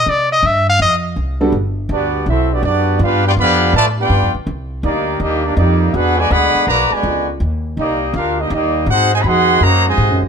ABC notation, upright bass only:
X:1
M:4/4
L:1/8
Q:"Swing" 1/4=163
K:Clyd
V:1 name="Upright bass" clef=bass
C,2 G,,2 =F,,2 C,,2 | G,,,2 D,,2 B,,,2 F,,2 | G,,2 =F,,2 A,,2 (3G,, F,, D,, | C,,2 D,,2 _E,,2 =F,,2 |
E,,2 D,, z B,,, z ^C,,2 | _E,,2 C,,2 D,,2 E,,2 | _A,,2 =F,,2 _G,,2 (3A,, G,, _E,, |]